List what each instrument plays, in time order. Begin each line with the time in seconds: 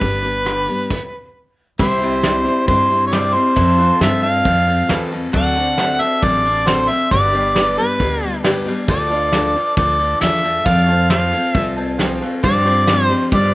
Already playing: harmonica B4
0.01 upright bass G1, steel-string acoustic guitar G2 D3 G3 B3 D4 G4, kick, closed hi-hat
0.23 steel-string acoustic guitar G3 B3 D4 G4, closed hi-hat
0.45 steel-string acoustic guitar G2 D3 G3 B3 D4 G4, cross-stick, closed hi-hat
0.67 steel-string acoustic guitar G3 B3 D4 G4, closed hi-hat
0.90 kick, crash
1.79 upright bass C2, steel-string acoustic guitar C3 G3 C4 E4 G4, pedal steel guitar E4 G4 C5, harmonica C5, kick, crash
2.01 steel-string acoustic guitar C4 E4 G4, upright piano E4 G4 C5, ride
2.23 steel-string acoustic guitar C3 G3 C4 E4 G4, upright piano E4 G4 D5, snare, ride
2.45 steel-string acoustic guitar C4 E4 G4, ride
2.66 upright bass G2, steel-string acoustic guitar G3 C4 E4 G4, harmonica C5, kick, ride
2.89 steel-string acoustic guitar C4 E4 G4, ride
3.07 upright piano E4, harmonica C#5
3.11 steel-string acoustic guitar C3 G3 C4 E4 G4, upright piano G4 C5, harmonica D5, snare, ride
3.33 steel-string acoustic guitar C4 E4 G4, harmonica C5, ride
3.56 upright bass F2, steel-string acoustic guitar F3 C4 F4 A4, pedal steel guitar C4 E4 A4, kick, ride
3.76 pedal steel guitar F4, upright piano F4 A4, steel-string acoustic guitar F4 A4, ride
3.80 steel-string acoustic guitar C4, upright piano C5
4.00 upright bass G2, steel-string acoustic guitar F3 C4 F4 A4, upright piano F4 A4 C5, harmonica E5, snare, ride
4.22 steel-string acoustic guitar C4 F4 A4, harmonica F5, ride
4.45 upright bass F2, steel-string acoustic guitar F3 C4 F4 A4, kick, ride
4.67 steel-string acoustic guitar C4 F4 A4, ride
4.88 upright bass E2, steel-string acoustic guitar F3 C4 F4 A4, upright piano F4 A4 B4, snare, ride
5.12 steel-string acoustic guitar C4 F4 A4, ride
5.33 upright bass D2, steel-string acoustic guitar D3 F#3 C4 D4 A4, pedal steel guitar F#4 A4 D5, harmonica F#5, kick, ride
5.56 steel-string acoustic guitar C4 D4 A4, upright piano F#4 C5 D5, ride
5.78 steel-string acoustic guitar D3 F#3 C4 D4 A4, upright piano F#4 C5 E5, snare, ride
6.00 steel-string acoustic guitar C4 D4 A4, harmonica E5, ride
6.22 upright bass A1, steel-string acoustic guitar F#3 C4 D4 A4, harmonica D5, kick, ride
6.45 steel-string acoustic guitar C4 D4 A4, ride
6.66 steel-string acoustic guitar D3 F#3 C4 D4 A4, upright piano F#4 C5 D5, harmonica C5, snare, ride
6.89 steel-string acoustic guitar C4 D4 A4, harmonica E5, ride
7.11 upright bass G1, steel-string acoustic guitar G2 D3 G3 B3 D4 G4, pedal steel guitar F#4 B4 D5, harmonica D5, kick, ride
7.32 steel-string acoustic guitar G3 B3 D4 G4, upright piano G4 B4 D5, pedal steel guitar G4, ride
7.54 steel-string acoustic guitar G2 D3 G3 B3 D4 G4, upright piano G4 B4 D5, snare, ride
7.77 steel-string acoustic guitar G3 B3 D4 G4, harmonica B4, ride
8.00 upright bass D2, steel-string acoustic guitar G3 B3 D4 G4, kick, ride
8.21 steel-string acoustic guitar G3 B3 D4 G4, harmonica A4, ride
8.43 steel-string acoustic guitar G2 D3 G3 B3 D4 G4, upright piano G4 B4 D5, snare, ride
8.66 steel-string acoustic guitar G3 B3 D4 G4, ride
8.88 upright bass D2, steel-string acoustic guitar D3 F3 D4 F4 A4, pedal steel guitar G4 A4 D5, harmonica D5, kick, ride
9.10 steel-string acoustic guitar D4 F4 A4, upright piano F4 A4 D5, ride
9.14 pedal steel guitar F4
9.32 steel-string acoustic guitar D3 F3 D4 F4 A4, upright piano F4 A4 D5, snare, ride
9.55 steel-string acoustic guitar D4 F4 A4, ride
9.77 upright bass D2, steel-string acoustic guitar F3 D4 F4 A4, harmonica D5, kick, ride
9.99 steel-string acoustic guitar D4 F4 A4, ride
10.20 upright bass E2, steel-string acoustic guitar D3 F3 D4 F4 A4, upright piano F4 A4 D5, harmonica E5, snare, ride
10.43 steel-string acoustic guitar D4 F4 A4, ride
10.66 upright bass F2, steel-string acoustic guitar F3 C4 F4 A4, pedal steel guitar F4 A4 D5, harmonica F5, kick, ride
10.87 upright piano F4 A4 C5, steel-string acoustic guitar F4 A4, ride
10.92 steel-string acoustic guitar C4, pedal steel guitar C5
11.09 steel-string acoustic guitar F3 C4 F4 A4, upright piano F4 A4 C5, harmonica F5, snare, ride
11.32 steel-string acoustic guitar F4 A4, ride
11.36 steel-string acoustic guitar C4
11.54 upright bass C2, steel-string acoustic guitar F3 C4 F4 A4, harmonica E5, kick, ride
11.77 steel-string acoustic guitar C4 F4 A4, upright piano A5, ride
11.98 steel-string acoustic guitar F3 C4 F4 A4, upright piano F4 A4 C5 G5, snare, ride
12.21 steel-string acoustic guitar C4 F4 A4, upright piano F5, ride
12.43 steel-string acoustic guitar G2 D3 F3 C4 D4 G4, upright bass G2, pedal steel guitar F4 C5, harmonica D5, kick, ride
12.65 steel-string acoustic guitar F3 C4 D4 G4, upright piano F4 G4 C5, ride
12.69 pedal steel guitar G4 D5
12.87 steel-string acoustic guitar G2 D3 F3 C4 D4 G4, upright piano F4 G4 C5, snare, ride
13.04 harmonica C5
13.09 steel-string acoustic guitar F3 C4 D4 G4, ride
13.31 upright bass G2, steel-string acoustic guitar F3 B3 F4 G4, pedal steel guitar G4 C5 D5, harmonica D5, kick, ride